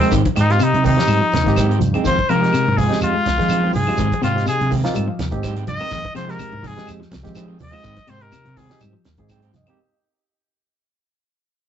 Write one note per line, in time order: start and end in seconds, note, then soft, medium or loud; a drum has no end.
0.00 0.12 G#3 medium
0.00 0.09 G#3 soft
0.00 0.12 C4 medium
0.00 0.12 C4 loud
0.00 0.10 C4 medium
0.00 0.12 D#4 medium
0.00 0.11 G#4 medium
0.00 0.12 A#4 medium
0.00 snare soft
0.00 claves medium
0.10 0.24 G#2 loud
0.10 0.24 D#3 medium
0.10 0.33 D#3 loud
0.10 0.23 G#3 medium
0.10 0.23 C4 medium
0.10 0.23 G4 medium
0.10 kick loud
0.10 closed hi-hat medium
0.10 high conga soft
0.10 shekere medium
0.24 muted clean electric guitar stroke soft
0.24 kick medium
0.24 closed hi-hat soft
0.24 high conga loud
0.36 0.58 G#2 loud
0.36 0.49 D#3 medium
0.36 0.48 G#3 medium
0.36 0.53 D#4 loud
0.36 0.47 G4 loud
0.36 muted clean electric guitar stroke medium
0.36 snare soft
0.36 closed hi-hat medium
0.36 claves medium
0.36 shekere soft
0.48 0.72 A#3 medium
0.48 0.72 C4 medium
0.48 0.72 D#4 medium
0.48 0.65 F4 medium
0.48 0.72 G4 medium
0.48 muted clean electric guitar stroke soft
0.48 snare soft
0.48 closed hi-hat soft
0.59 0.81 C3 medium
0.59 closed hi-hat medium
0.59 high conga soft
0.59 claves medium
0.59 shekere medium
0.63 0.85 D#4 loud
0.72 0.95 C3 medium
0.72 muted clean electric guitar stroke soft
0.72 closed hi-hat soft
0.72 high conga medium
0.83 0.97 D#3 medium
0.83 1.06 D#3 medium
0.83 0.96 C4 medium
0.83 1.79 D#4 loud
0.83 0.96 G4 medium
0.83 kick medium
0.83 open hi-hat medium
0.83 low conga loud
0.83 shekere soft
0.97 1.20 A#3 medium
0.97 1.20 C4 medium
0.97 1.21 D#4 medium
0.97 1.20 G4 medium
0.97 muted clean electric guitar stroke soft
0.97 snare medium
1.07 1.19 G#2 medium
1.07 1.20 G3 medium
1.07 muted clean electric guitar stroke soft
1.07 closed hi-hat medium
1.07 claves medium
1.07 shekere medium
1.21 1.42 F3 medium
1.21 muted clean electric guitar stroke soft
1.32 1.44 D#2 medium
1.32 muted clean electric guitar stroke soft
1.32 snare medium
1.32 closed hi-hat medium
1.32 high conga loud
1.32 low conga medium
1.32 shekere soft
1.44 1.77 G#2 medium
1.44 1.66 D#3 medium
1.44 1.69 A#3 medium
1.44 1.69 C4 medium
1.44 1.70 D#4 medium
1.44 kick medium
1.44 snare soft
1.44 closed hi-hat soft
1.48 1.70 G4 medium
1.56 1.69 D#3 medium
1.56 1.69 G#3 medium
1.56 1.68 C4 medium
1.56 1.68 G4 medium
1.56 kick medium
1.56 closed hi-hat medium
1.56 high conga loud
1.56 claves medium
1.56 shekere loud
1.69 1.80 D#3 medium
1.69 1.80 G#3 medium
1.69 1.80 C4 medium
1.69 1.80 G4 medium
1.69 closed hi-hat soft
1.79 1.93 G2 medium
1.79 2.01 F3 medium
1.79 muted clean electric guitar stroke soft
1.79 closed hi-hat soft
1.79 high conga medium
1.79 low conga medium
1.79 shekere soft
1.93 2.05 G#3 soft
1.93 2.05 A#3 medium
1.93 2.05 C4 medium
1.93 2.06 D#4 medium
1.93 2.06 G4 medium
1.93 2.06 G#4 medium
1.93 closed hi-hat soft
1.93 high conga medium
1.93 claves medium
2.04 2.17 F2 loud
2.04 2.26 D#3 medium
2.04 2.19 D#3 medium
2.04 2.18 G#3 medium
2.04 2.18 C4 medium
2.04 2.18 F4 medium
2.04 2.31 C5 loud
2.04 kick medium
2.04 closed hi-hat medium
2.04 shekere medium
2.19 kick medium
2.19 high conga medium
2.29 2.51 C3 medium
2.29 2.42 D#3 medium
2.29 2.50 F3 medium
2.29 2.42 G#3 loud
2.29 2.42 C4 loud
2.29 2.42 F4 loud
2.29 2.79 A#4 loud
2.29 closed hi-hat medium
2.29 claves medium
2.29 shekere soft
2.40 2.64 G#3 medium
2.40 2.65 C4 medium
2.40 2.65 D#4 medium
2.40 2.65 G4 medium
2.40 muted clean electric guitar stroke soft
2.40 closed hi-hat soft
2.45 snare soft
2.53 2.75 C3 loud
2.53 snare soft
2.53 closed hi-hat medium
2.53 high conga soft
2.53 claves medium
2.53 shekere medium
2.66 2.88 G#2 medium
2.66 muted clean electric guitar stroke soft
2.66 high conga medium
2.77 2.90 D#3 medium
2.77 2.99 F3 medium
2.77 2.89 G#3 medium
2.77 2.89 C4 medium
2.77 2.89 F4 medium
2.77 3.01 G#4 loud
2.77 kick medium
2.77 open hi-hat medium
2.77 low conga loud
2.77 shekere soft
2.88 3.12 G#3 medium
2.88 3.13 C4 medium
2.88 3.13 D#4 medium
2.88 3.13 G4 medium
2.88 muted clean electric guitar stroke soft
2.88 closed hi-hat soft
2.93 snare medium
3.01 3.13 F2 medium
3.01 3.73 F4 loud
3.01 muted clean electric guitar stroke soft
3.01 closed hi-hat medium
3.01 high conga soft
3.01 claves medium
3.01 shekere medium
3.14 3.36 G#3 medium
3.14 muted clean electric guitar stroke soft
3.25 3.37 C2 medium
3.25 muted clean electric guitar stroke soft
3.25 snare medium
3.25 closed hi-hat medium
3.25 high conga loud
3.25 low conga medium
3.25 shekere soft
3.38 3.60 D#3 medium
3.38 3.70 F3 loud
3.38 3.61 G#3 medium
3.38 3.61 C4 medium
3.38 3.62 D#4 medium
3.38 3.62 G#4 medium
3.38 kick medium
3.38 snare soft
3.38 closed hi-hat soft
3.49 3.62 D#3 medium
3.49 3.63 G#3 medium
3.49 3.62 C4 medium
3.49 3.62 F4 medium
3.49 closed hi-hat medium
3.49 high conga loud
3.49 claves medium
3.49 shekere medium
3.63 3.74 D#3 medium
3.63 3.74 G#3 medium
3.63 3.75 C4 medium
3.63 3.74 F4 medium
3.73 3.86 G2 medium
3.73 3.95 F3 medium
3.73 4.21 G#4 medium
3.73 muted clean electric guitar stroke soft
3.73 open hi-hat medium
3.73 low conga medium
3.73 shekere soft
3.87 3.99 G#3 medium
3.87 3.97 G#3 soft
3.87 3.99 C4 medium
3.87 3.97 C4 medium
3.87 3.99 D#4 medium
3.87 3.98 F4 medium
3.87 3.99 G4 medium
3.87 high conga medium
3.87 claves medium
3.97 4.10 G#2 loud
3.97 4.11 D#3 medium
3.97 4.20 D#3 loud
3.97 4.10 G#3 medium
3.97 4.09 C4 medium
3.97 4.09 G4 medium
3.97 kick medium
3.97 closed hi-hat medium
3.97 high conga soft
3.97 shekere medium
4.10 muted clean electric guitar stroke soft
4.10 kick medium
4.10 closed hi-hat soft
4.10 high conga loud
4.21 4.44 G#2 medium
4.21 4.43 C3 medium
4.21 4.35 D#3 medium
4.21 4.34 G#3 medium
4.21 4.34 C4 loud
4.21 4.47 F4 loud
4.21 4.34 G4 loud
4.21 snare soft
4.21 closed hi-hat medium
4.21 claves medium
4.21 shekere soft
4.35 4.58 A#3 medium
4.35 4.58 C4 medium
4.35 4.58 D#4 medium
4.35 4.58 G4 medium
4.35 muted clean electric guitar stroke soft
4.35 snare soft
4.35 closed hi-hat soft
4.46 4.68 C3 loud
4.46 4.71 G#4 loud
4.46 snare soft
4.46 closed hi-hat medium
4.46 high conga soft
4.46 claves medium
4.46 shekere medium
4.59 4.82 C3 medium
4.59 muted clean electric guitar stroke soft
4.59 closed hi-hat soft
4.59 high conga medium
4.70 4.83 D#3 medium
4.70 4.92 D#3 medium
4.70 4.83 G#3 medium
4.70 4.83 C4 medium
4.70 4.82 G4 medium
4.70 kick medium
4.70 open hi-hat medium
4.70 low conga medium
4.70 shekere soft
4.83 5.07 A#3 loud
4.83 5.07 C4 loud
4.83 5.07 D#4 loud
4.83 5.07 F4 loud
4.83 muted clean electric guitar stroke medium
4.83 snare medium
4.94 5.07 G#2 loud
4.94 5.06 G3 medium
4.94 muted clean electric guitar stroke soft
4.94 closed hi-hat medium
4.94 claves medium
4.94 shekere medium
5.08 5.29 F3 medium
5.08 muted clean electric guitar stroke medium
5.19 5.31 D#2 medium
5.19 muted clean electric guitar stroke soft
5.19 snare medium
5.19 closed hi-hat medium
5.19 high conga medium
5.19 low conga medium
5.19 shekere soft
5.31 5.63 G#2 loud
5.31 5.53 D#3 medium
5.31 5.55 A#3 medium
5.31 5.55 C4 medium
5.31 5.55 D#4 medium
5.31 5.55 G4 loud
5.31 kick medium
5.31 closed hi-hat soft
5.43 5.56 D#3 medium
5.43 5.56 G#3 medium
5.43 5.56 C4 medium
5.43 5.55 G4 medium
5.43 kick medium
5.43 snare soft
5.43 closed hi-hat medium
5.43 high conga medium
5.43 claves medium
5.43 shekere loud
5.56 5.65 D#3 medium
5.56 5.65 G#3 medium
5.56 5.65 C4 medium
5.56 5.66 G4 medium
5.56 closed hi-hat soft
5.66 5.79 G2 medium
5.66 5.89 F3 medium
5.66 6.15 D#5 loud
5.66 muted clean electric guitar stroke soft
5.66 closed hi-hat soft
5.66 low conga medium
5.66 shekere soft
5.80 5.90 G#3 soft
5.80 5.92 A#3 medium
5.80 5.91 C4 medium
5.80 5.92 C4 medium
5.80 5.92 D#4 medium
5.80 5.91 G4 medium
5.80 5.92 A#4 medium
5.80 closed hi-hat soft
5.80 high conga medium
5.80 claves medium
5.91 6.03 F2 loud
5.91 6.13 D#3 medium
5.91 6.05 D#3 medium
5.91 6.03 G#3 medium
5.91 6.03 C4 medium
5.91 6.02 G#4 medium
5.91 kick medium
5.91 closed hi-hat medium
5.91 high conga soft
5.91 shekere medium
6.04 muted clean electric guitar stroke soft
6.04 kick medium
6.04 high conga loud
6.14 6.37 C3 medium
6.14 6.28 D#3 loud
6.14 6.37 F3 loud
6.14 6.26 G#3 loud
6.14 6.26 C4 medium
6.14 6.26 G#4 loud
6.14 6.32 C5 loud
6.14 snare soft
6.14 closed hi-hat medium
6.14 claves medium
6.14 shekere soft
6.27 6.51 G#3 medium
6.27 6.51 C4 medium
6.27 6.51 D#4 medium
6.27 6.51 G4 medium
6.27 6.69 A#4 loud
6.27 muted clean electric guitar stroke soft
6.27 snare soft
6.27 closed hi-hat soft
6.39 6.61 C3 medium
6.39 closed hi-hat medium
6.39 high conga soft
6.39 low conga medium
6.39 claves medium
6.39 shekere medium
6.52 6.74 G#2 medium
6.52 muted clean electric guitar stroke soft
6.52 high conga loud
6.63 6.76 D#3 medium
6.63 6.85 F3 medium
6.63 6.75 G#3 medium
6.63 6.75 C4 medium
6.63 6.75 G#4 medium
6.63 kick medium
6.63 snare soft
6.63 open hi-hat medium
6.63 low conga medium
6.63 shekere soft
6.67 6.89 G#4 loud
6.76 7.00 G#3 medium
6.76 6.99 C4 medium
6.76 7.00 D#4 medium
6.76 7.00 G4 medium
6.76 muted clean electric guitar stroke soft
6.76 snare medium
6.76 closed hi-hat soft
6.87 7.00 F2 loud
6.87 muted clean electric guitar stroke soft
6.87 closed hi-hat medium
6.87 claves medium
6.87 shekere medium
7.00 7.22 F3 medium
7.00 muted clean electric guitar stroke soft
7.00 snare soft
7.10 7.25 C2 medium
7.10 muted clean electric guitar stroke soft
7.10 snare medium
7.10 closed hi-hat medium
7.10 high conga loud
7.10 shekere soft
7.23 7.46 D#3 medium
7.23 7.56 F3 medium
7.23 7.47 G#3 medium
7.23 7.47 C4 medium
7.23 7.47 D#4 medium
7.23 7.47 G4 loud
7.23 kick medium
7.23 snare soft
7.23 closed hi-hat soft
7.35 7.48 D#3 medium
7.35 7.47 C4 medium
7.35 7.47 G#4 medium
7.35 muted clean electric guitar stroke medium
7.35 closed hi-hat medium
7.35 high conga medium
7.35 claves medium
7.35 shekere loud
7.48 7.58 D#3 medium
7.48 7.59 G#3 medium
7.48 7.59 C4 medium
7.48 7.59 G#4 medium
7.59 7.73 D#2 medium
7.59 7.82 F3 medium
7.59 8.11 D#5 loud
7.59 muted clean electric guitar stroke soft
7.59 open hi-hat medium
7.59 low conga medium
7.59 shekere soft
7.71 7.84 G#3 medium
7.71 7.82 G#3 medium
7.71 7.84 C4 medium
7.71 7.83 C4 soft
7.71 7.84 D#4 medium
7.71 7.84 F4 medium
7.71 7.84 G#4 medium
7.71 claves medium
7.83 7.96 G#2 loud
7.83 7.97 D#3 medium
7.83 8.06 D#3 medium
7.83 7.96 G#3 medium
7.83 7.96 C4 medium
7.83 7.95 G4 medium
7.83 kick loud
7.83 closed hi-hat medium
7.83 shekere medium
7.96 kick medium
7.96 snare soft
7.96 closed hi-hat soft
7.96 high conga loud
8.07 8.30 G#2 loud
8.07 8.29 C3 medium
8.07 8.22 D#3 medium
8.07 8.21 G#3 medium
8.07 8.21 C4 loud
8.07 8.20 G4 loud
8.07 8.23 C5 loud
8.07 snare soft
8.07 closed hi-hat medium
8.07 claves medium
8.07 shekere soft
8.20 8.44 A#3 medium
8.20 8.44 C4 medium
8.20 8.44 D#4 medium
8.20 8.45 G4 medium
8.20 8.59 A#4 loud
8.20 muted clean electric guitar stroke soft
8.20 closed hi-hat soft
8.32 8.54 C3 loud
8.32 snare soft
8.32 closed hi-hat medium
8.32 high conga soft
8.32 low conga medium
8.32 claves medium
8.32 shekere medium
8.45 8.67 C3 medium
8.45 muted clean electric guitar stroke soft
8.45 closed hi-hat soft
8.45 high conga medium
8.57 8.78 D#3 medium
8.57 8.70 D#3 medium
8.57 8.69 G#3 medium
8.57 8.69 C4 medium
8.57 8.68 G4 medium
8.57 8.81 G#4 loud
8.57 kick medium
8.57 snare soft
8.57 open hi-hat medium
8.57 low conga medium
8.57 shekere soft
8.70 8.93 A#3 medium
8.70 8.93 C4 medium
8.70 8.93 D#4 medium
8.70 8.93 G4 medium
8.70 muted clean electric guitar stroke medium
8.70 snare medium
8.81 8.93 G#2 medium
8.81 8.92 G3 medium
8.81 muted clean electric guitar stroke soft
8.81 closed hi-hat medium
8.81 high conga soft
8.81 claves medium
8.81 shekere medium
8.93 9.15 F3 medium
8.93 muted clean electric guitar stroke soft
9.05 9.17 D#2 medium
9.05 muted clean electric guitar stroke soft
9.05 snare medium
9.05 closed hi-hat medium
9.05 high conga loud
9.05 shekere soft
9.17 9.49 G#2 loud
9.17 9.39 D#3 medium
9.17 9.41 A#3 medium
9.17 9.41 C4 medium
9.17 9.41 D#4 medium
9.17 9.42 G#4 medium
9.17 kick medium
9.17 closed hi-hat soft
9.29 9.42 D#3 medium
9.29 9.42 G#3 medium
9.29 9.42 C4 medium
9.29 9.42 G4 medium
9.29 9.53 G5 medium
9.29 kick medium
9.29 closed hi-hat medium
9.29 high conga medium
9.29 claves medium
9.29 shekere medium
9.42 9.52 D#3 medium
9.42 9.53 G#3 medium
9.42 9.53 C4 medium
9.42 9.53 G4 medium
9.42 closed hi-hat soft
9.53 9.66 G2 medium
9.53 9.75 F3 medium
9.53 9.78 D#5 medium
9.53 snare soft
9.53 closed hi-hat medium
9.53 low conga medium
9.53 shekere soft
9.66 9.78 G#3 medium
9.66 9.79 A#3 medium
9.66 9.78 C4 medium
9.66 9.79 C4 medium
9.66 9.79 D#4 medium
9.66 9.78 G4 medium
9.66 9.79 G4 loud
9.66 closed hi-hat soft
9.66 claves medium